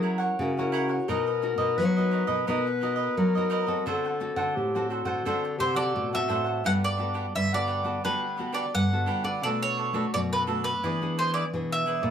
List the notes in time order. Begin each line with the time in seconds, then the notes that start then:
Already playing: F#3 C#4 E4 A#4
0.02 E4 A#4 C#5 F#5
0.18 A#4 C#5 F#5
0.38 C#3 C#4 E4 F#4 A#4
0.57 C#4 E4 A#4 C#5 F#5
0.72 E4 A#4 C#5 F#5
0.88 A#4 C#5 F#5
1.08 B2 B3 D#4 F#4 A#4 B4 D#5
1.27 A#4 B4 D#5
1.42 D#4 F#4 A#4, muted cavaquinho stroke
1.58 B2 A#4 B4 D#5
1.77 F#3 B4
1.96 D#4 F#4 A#4 B4 D#5
2.11 D#4 A#4 B4 D#5
2.27 B2 A#4 B4 D#5
2.47 B2 B3 D#4 F#4 A#4 B4 D#5
2.67 muted cavaquinho stroke
2.81 D#4 F#4 A#4 B4 D#5
2.96 A#4 B4 D#5
3.17 F#3 A#4
3.35 D#4 F#4 A#4 B4 D#5
3.50 D#4 A#4 B4 D#5
3.67 C4 F#4 A4 A#4 B4 D#5
3.86 D3 D4 A4 C5 F#5
4.05 A4 C5 F#5
4.20 C4 F#4 A4, muted cavaquinho stroke
4.36 D3 A4 C5 F#5
4.56 A2 G4
4.75 C4 F#4 A4 C5 F#5
4.89 D4 F#4 A4 C5 F#5
5.05 D3 A4 C5 F#5
5.25 D3 C4 D4 F#4 A4 C5 F#5
5.44 muted cavaquinho stroke
5.58 C3 D4 G4 A4 C5 F#5
5.75 C4 F#4 A4 C5 D5 F#5
5.95 A2 B2 F#4
6.13 C4 F#4 A4 C5 E5 F#5
6.28 A2 D4 A4 C5 F#5
6.44 A4 C5 F#5
6.64 G2 G3 B3 D4 F#4 G4 A4 B4 F#5
6.84 D5
6.97 B3 D4 F#4 G4 A4 B4 F#5
7.14 D4 G4 B4 F#5
7.35 G2 D3 E5
7.53 B3 F#4 G4 A4 B4 D5 F#5
7.67 D4 G4 B4 F#5
7.83 B3 F#4 G4 A4 B4 F#5
8.04 D3 G3 B3 D4 F#4 G4 A4 B4 F#5
8.37 B3 D4 F#4 G4 A4 B4 F#5
8.53 D4 G4 B4 D5 F#5
8.74 G2 D3 F#5
8.93 B3 F#4 A4
9.06 D4 G4 B4 F#5
9.23 D3 G4 B4 D5 F#5
9.43 B2 A3 D4 F#4 A4 B4 D5
9.63 C#5
9.77 D4 A4 B4 D5
9.93 A3 D4 F#4 A4 B4 D5
10.14 F#2 B2 D5
10.32 A4 B4 D5
10.47 A3 D4 F#4 A4 B4 D5
10.64 A4 B4 D5
10.83 E3 B3 D4 E4 G#4 B4 D5
11.02 B3 D4 G#4
11.17 E4 G#4 B4 C5 D5
11.34 E4 G#4 B4 D5
11.54 B2 E3 B3 D4 G#4
11.72 E5
11.86 E4 G#4 B4 D5
12.02 A#2 G#4 B4 D5